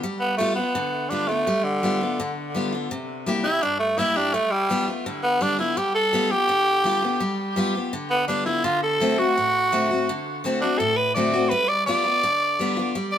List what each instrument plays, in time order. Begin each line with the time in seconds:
0.03 steel-string acoustic guitar G3
0.20 tenor saxophone B3
0.37 steel-string acoustic guitar G3 B3 F4, tenor saxophone A3
0.55 tenor saxophone B3, steel-string acoustic guitar B3 F4
0.75 steel-string acoustic guitar D3
1.09 steel-string acoustic guitar G3 B3 F4, tenor saxophone D4
1.28 tenor saxophone A3, steel-string acoustic guitar B3 F4
1.47 steel-string acoustic guitar G3
1.64 tenor saxophone D3
1.83 steel-string acoustic guitar G3 B3 F4
2.01 steel-string acoustic guitar B3 F4
2.20 steel-string acoustic guitar D3
2.55 steel-string acoustic guitar G3 B3 F4
2.72 steel-string acoustic guitar B3 F4
2.91 steel-string acoustic guitar C3
3.26 steel-string acoustic guitar G3 A#3 E4 G4
3.44 tenor saxophone E4, steel-string acoustic guitar E4 G4
3.62 steel-string acoustic guitar G2, tenor saxophone D4
3.79 tenor saxophone A3
3.98 steel-string acoustic guitar G3 A#3 E4 G4, tenor saxophone E4
4.16 tenor saxophone D4, steel-string acoustic guitar E4 G4
4.34 steel-string acoustic guitar G3, tenor saxophone A3
4.52 tenor saxophone G3
4.70 steel-string acoustic guitar G3 B3 F4
4.88 steel-string acoustic guitar B3 F4
5.06 steel-string acoustic guitar D3
5.23 tenor saxophone B3
5.41 steel-string acoustic guitar G3 B3 F4, tenor saxophone D4
5.59 steel-string acoustic guitar B3 F4, tenor saxophone E4
5.77 steel-string acoustic guitar G3, tenor saxophone G4
5.95 tenor saxophone A4
6.13 steel-string acoustic guitar G3 B3 F4
6.31 steel-string acoustic guitar B3 F4, tenor saxophone G4
6.49 steel-string acoustic guitar D3
6.84 steel-string acoustic guitar G3 B3 F4
7.02 steel-string acoustic guitar B3 F4
7.20 steel-string acoustic guitar G3
7.56 steel-string acoustic guitar G3 B3 F4
7.75 steel-string acoustic guitar B3 F4
7.93 steel-string acoustic guitar D3
8.10 tenor saxophone B3
8.28 steel-string acoustic guitar G3 B3 F4, tenor saxophone D4
8.46 steel-string acoustic guitar B3 F4, tenor saxophone E4
8.64 steel-string acoustic guitar D3, tenor saxophone F4
8.83 tenor saxophone A4
9.00 steel-string acoustic guitar D3 A3 C4 F#4
9.18 steel-string acoustic guitar C4 F#4, tenor saxophone F#4
9.37 steel-string acoustic guitar A2
9.72 steel-string acoustic guitar D3 A3 C4 F#4
9.91 steel-string acoustic guitar C4 F#4
10.09 steel-string acoustic guitar D3
10.44 steel-string acoustic guitar D3 A3 C4 F#4
10.61 steel-string acoustic guitar C4 F#4, tenor saxophone D4
10.78 steel-string acoustic guitar A2, tenor saxophone A4
10.97 tenor saxophone B4
11.14 steel-string acoustic guitar D3 A3 C4 F#4, tenor saxophone D5
11.33 steel-string acoustic guitar C4 F#4
11.49 steel-string acoustic guitar G3, tenor saxophone B4
11.68 tenor saxophone D5
11.86 steel-string acoustic guitar G3 B3 F4, tenor saxophone D5
12.05 steel-string acoustic guitar B3 F4
12.23 steel-string acoustic guitar D3
12.59 steel-string acoustic guitar G3 B3 F4
12.77 steel-string acoustic guitar B3 F4
12.95 steel-string acoustic guitar G3
13.12 tenor saxophone D5